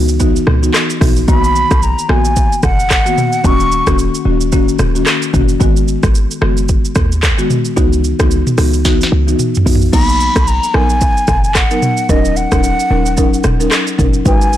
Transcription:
Already playing: C#2
0.08 shaker
0.20 E3 B3 D#4 F#4, kick, shaker
0.36 shaker
0.47 C#2, cross-stick, mid tom
0.62 E3 B3 D#4 F#4, shaker
0.74 cross-stick, clap, shaker
0.90 shaker
1.01 A#1 E3 B3 D#4 F#4, kick, cross-stick, mid tom, open hi-hat, shaker
1.16 shaker
1.28 B1 D#3 A#3 B3 F#4 B5, kick, shaker
1.44 shaker
1.56 shaker
1.71 B1, kick, cross-stick, shaker
1.82 A#5, shaker
1.99 shaker
2.09 A#1 D#3 A#3 B3 F#4 G#5, cross-stick
2.25 shaker
2.36 kick, shaker
2.52 shaker
2.63 F#1 F#5, kick, cross-stick, mid tom, shaker
2.80 shaker
2.90 kick, cross-stick, clap, shaker
3.05 D#3 A#3 B3 F#4, shaker
3.18 mid tom, shaker
3.32 shaker
3.44 D#1 D#3 A#3 C#4 F#4 C#6, kick, shaker
3.60 shaker
3.72 shaker
3.87 D#1 D#3 A#3 C#4 F#4, kick, cross-stick, shaker
3.99 shaker
4.15 shaker
4.25 D#1 D#3 A#3 C#4 F#4
4.41 shaker
4.52 D#3 A#3 C#4 F#4, kick, shaker
4.68 shaker
4.79 D#1, cross-stick, mid tom, shaker
4.95 D#3 A#3 C#4 F#4, shaker
5.06 cross-stick, clap, shaker
5.22 shaker
5.33 F#1 D#3 A#3 C#4 F#4, kick, mid tom, shaker
5.49 shaker
5.60 G#1 D#3 G#3 B3 F#4, kick, shaker
5.76 shaker
5.88 shaker
6.03 G#1, kick, cross-stick, shaker
6.15 shaker
6.31 shaker
6.41 F#1 D#3 G#3 B3 F#4, cross-stick
6.57 shaker
6.69 kick, shaker
6.85 shaker
6.95 D#2, kick, cross-stick, mid tom, shaker
7.12 shaker
7.23 kick, cross-stick, clap, shaker
7.38 D#3 G#3 B3 F#4, shaker
7.50 mid tom, shaker
7.65 shaker
7.76 C#2 E3 B3 D#4 F#4, kick, shaker
7.93 shaker
8.04 shaker
8.19 C#2 E3 B3 D#4 F#4, kick, cross-stick, shaker
8.31 shaker
8.47 mid tom, shaker
8.58 C#2 E3 B3 D#4 F#4, cross-stick, open hi-hat, shaker
8.73 shaker
8.85 E3 B3 D#4 F#4, kick, snare, shaker
9.01 snare, shaker
9.12 C#2
9.27 E3 B3 D#4 F#4, shaker
9.39 mid tom, shaker
9.55 floor tom, shaker
9.65 A#1 E3 B3 D#4 F#4, open hi-hat, shaker
9.75 floor tom
9.81 shaker
9.93 B1 F#3 A#3 B3 D#4 B5, kick, crash, shaker
10.09 shaker
10.20 shaker
10.36 B1, kick, cross-stick, shaker
10.47 A#5, shaker
10.64 shaker
10.74 A#1 F#3 B3 D#4 A#4 G#5, cross-stick
10.90 shaker
11.01 kick, shaker
11.17 shaker
11.28 F#1, kick, cross-stick, mid tom, shaker
11.44 shaker
11.55 F#5, kick, cross-stick, clap, shaker
11.71 F#3 B3 D#4 A#4, shaker
11.83 mid tom, shaker
11.97 shaker
12.09 D#1 F#3 C#4 D#4 A#4 D#5, kick, shaker
12.25 shaker
12.36 F#5, shaker
12.52 D#1 F#3 C#4 D#4 A#4, kick, cross-stick, shaker
12.63 shaker
12.80 shaker
12.90 D#1 F#3 C#4 D#4 A#4
13.06 shaker
13.17 F#3 C#4 D#4 A#4, kick, shaker
13.34 shaker
13.44 D#1, cross-stick, mid tom, shaker
13.60 F#3 C#4 D#4 A#4, shaker
13.71 cross-stick, clap, shaker
13.87 shaker
13.98 F#1 F#3 C#4 D#4 A#4, kick, mid tom, shaker
14.14 shaker
14.25 G#1 G#3 D#4 F#4 B4 G#5, kick, shaker
14.41 shaker
14.53 shaker

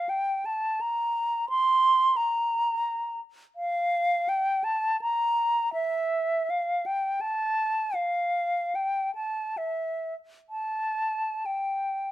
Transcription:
Already playing: F5
0.09 G5
0.46 A5
0.81 A#5
1.50 C6
2.16 A#5
3.56 F5
4.29 G5
4.64 A5
5.02 A#5
5.74 E5
6.50 F5
6.86 G5
7.21 A5
7.95 F5
8.75 G5
9.15 A5
9.57 E5
10.50 A5
11.46 G5

